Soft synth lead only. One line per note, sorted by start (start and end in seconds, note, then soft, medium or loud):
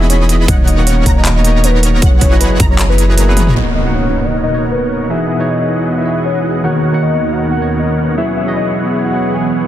0.10 0.23 C#5 medium
0.48 0.62 D#5 loud
0.68 0.81 D#5 medium
0.87 1.18 C#5 loud
1.17 1.29 D#5 medium
1.36 1.65 D#5 loud
1.64 1.77 B4 loud
2.02 2.16 C#5 loud
2.21 2.35 C#5 medium
2.41 2.60 B4 loud
2.70 2.83 C#5 medium
2.90 3.09 B4 medium
3.18 3.31 A#4 medium
3.56 3.69 D#5 loud
3.75 3.89 D#5 medium
3.94 4.26 C#5 loud
4.24 4.36 D#5 medium
4.43 4.63 D#5 medium
4.72 4.85 B4 medium
5.10 5.23 E5 loud
5.29 5.50 E5 medium
5.49 5.80 D#5 loud
5.78 5.90 E5 medium
5.97 6.17 E5 medium
6.25 6.39 C#5 medium
6.64 6.77 F#5 loud
6.83 6.96 F#5 medium
7.02 7.33 D#5 medium
7.32 7.44 F#5 medium
7.51 7.70 F#5 loud
7.79 7.92 D#5 medium
8.17 8.31 E5 loud
8.37 8.50 E5 medium
8.56 8.75 D#5 medium
8.86 8.98 E5 medium
9.05 9.34 F#5 loud
9.33 9.46 G#5 medium